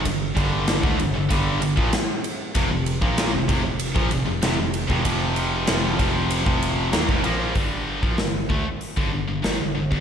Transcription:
<<
  \new Staff \with { instrumentName = "Distorted electric guitar" } { \clef bass \time 4/4 \key g \minor \tempo 4 = 96 <g, d>8 <g, d g>8. <d a>16 <g, d>16 <g, d>16 <g, d g>8 <g, d>16 <bes, f>16 r4 | <f, c>16 <f, c>8 <bes, f bes>8 <f, c>16 <f, c>16 <f, c>8 <bes, f>16 <f, c>16 <f, c>16 <f, c>16 <f, c>8 <f, c>16 | <f, c f>4 <f, c f>8 <f, c f>8. <f, c f>8. <ees bes>16 <f, c>16 <bes, f bes>8 | <g, d g>8. <bes, f>16 <g, d>8 <d a>16 r8 <g, d>16 <g, d>16 <g, d>16 <aes, ees>16 <g, d>16 <g, d>16 <g, d>16 | }
  \new Staff \with { instrumentName = "Distorted electric guitar" } { \clef bass \time 4/4 \key g \minor <g, d>8 <g, d g>8. <d a>16 <g, d>16 <g, d>16 <g, d g>8 <g, d>16 <bes, f>16 r4 | <f, c>16 <f, c>8 <bes, f bes>8 <f, c>16 <f, c>16 <f, c>8 <bes, f>16 <f, c>16 <f, c>16 <f, c>16 <f, c>8 <f, c>16 | <f, c f>4 <f, c f>8 <f, c f>8. <f, c f>8. <ees bes>16 <f, c>16 <bes, f bes>8 | r1 | }
  \new Staff \with { instrumentName = "Tine electric piano" } { \clef bass \time 4/4 \key g \minor g,,8 g,,8. d,16 g,,16 g,,16 g,,8 g,,16 bes,,16 r4 | f,,16 f,,8 bes,,8 f,,16 f,,16 f,,8 bes,,16 f,,16 f,,16 f,,16 f,,8 f,,16 | f,,4 f,,8 f,,8. f,,8. ees,16 f,,16 bes,,8 | g,,8. bes,,16 g,,8 d,16 g,,8 g,,16 g,,16 g,,16 aes,,16 g,,16 g,,16 g,,16 | }
  \new DrumStaff \with { instrumentName = "Drums" } \drummode { \time 4/4 <bd cymr>8 <bd cymr>8 <cymr sn>16 bd16 cymr8 <bd cymr>8 cymr16 bd16 <cymr sn>8 cymr8 | <bd cymr>8 cymr16 bd16 <cymr sn>8 <bd cymr>8 cymr16 bd16 cymr8 <cymr sn>8 cymr16 bd16 | <bd cymr>8 cymr8 <cymr sn>8 <bd cymr>8 cymr16 bd16 cymr8 <cymr sn>16 bd16 cymr8 | <hho bd>8. bd16 <hho sn>8 bd8 hho16 bd8. <hho sn>8. bd16 | }
>>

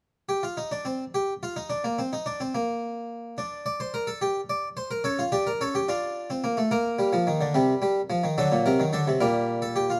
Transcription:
<<
  \new Staff \with { instrumentName = "Harpsichord" } { \time 6/8 \key g \minor \tempo 4. = 72 r8 g'16 f'16 ees'16 d'16 c'8 g'8 f'16 ees'16 | d'16 bes16 c'16 ees'16 d'16 c'16 bes4. | r8 d''16 c''16 bes'16 a'16 g'8 d''8 c''16 bes'16 | a'16 f'16 g'16 bes'16 a'16 g'16 f'4. |
bes'2. | a'8 bes'8 a'8 bes'8. a'16 g'16 f'16 | }
  \new Staff \with { instrumentName = "Harpsichord" } { \clef bass \time 6/8 \key g \minor << { r2. | r2. | d'2. | cis'8 d'8 cis'8 d'8. c'16 bes16 a16 |
bes4. g4. | fis4. g4. | } \\ { r2. | r2. | r2. | r2. |
r8 g16 f16 ees16 d16 c8 g8 f16 ees16 | d16 bes,16 c16 ees16 d16 c16 bes,4. | } >> }
>>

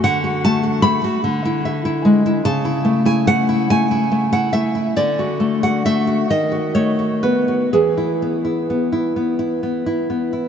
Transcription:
\new Staff \with { instrumentName = "Nylon-string guitar" } { \time 6/8 \key a \major \tempo 4. = 46 << { fis''8 a''8 b''2 | a''8. gis''16 fis''8 gis''8. fis''16 e''8 | d''8. fis''16 e''8 dis''8 cis''8 b'8 | gis'4. r4. | } \\ { d16 fis'16 a16 fis'16 a16 fis'16 d16 e'16 e''16 e'16 gis16 e'16 | cis16 e'16 a16 e'16 a16 e'16 a16 e'16 a16 e'16 a16 e'16 | d16 fis'16 a16 fis'16 a16 fis'16 dis16 fis'16 a16 fis'16 b16 fis'16 | e16 e'16 b16 e'16 b16 e'16 b16 e'16 b16 e'16 b16 e'16 | } >> }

